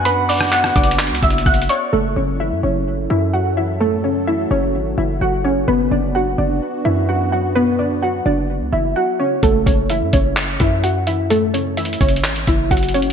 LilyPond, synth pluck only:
\new Staff \with { instrumentName = "Synth pluck" } { \time 4/4 \key fis \minor \tempo 4 = 128 <b' b''>8 <d'' d'''>8 <fis'' fis'''>8 <d'' d'''>4 <e'' e'''>8 <fis'' fis'''>8 <cis'' cis'''>8 | <a a'>8 <cis' cis''>8 <e' e''>8 <cis' cis''>4 <e' e''>8 <fis' fis''>8 <e' e''>8 | <a a'>8 <cis' cis''>8 <e' e''>8 <cis' cis''>4 <e' e''>8 <fis' fis''>8 <cis' cis''>8 | <b b'>8 <d' d''>8 <fis' fis''>8 <d' d''>4 <e' e''>8 <fis' fis''>8 <fis' fis''>8 |
<b b'>8 <d' d''>8 <fis' fis''>8 <d' d''>4 <e' e''>8 <fis' fis''>8 <cis' cis''>8 | <a a'>8 <cis' cis''>8 <e' e''>8 <cis' cis''>4 <e' e''>8 <fis' fis''>8 <e' e''>8 | <a a'>8 <cis' cis''>8 <e' e''>8 <cis' cis''>4 <e' e''>8 <fis' fis''>8 <cis' cis''>8 | }